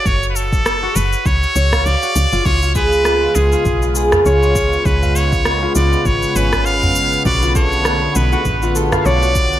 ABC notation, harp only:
X:1
M:4/4
L:1/16
Q:"Swing 16ths" 1/4=100
K:C#phr
V:1 name="Harp"
z4 z F z4 c ^e z F z ^E | ^E E G z E z2 E z E G ^e c E z2 | z ^e z3 ^E z4 C4 z2 | F ^E A z F z2 F z E A ^e c F z2 |]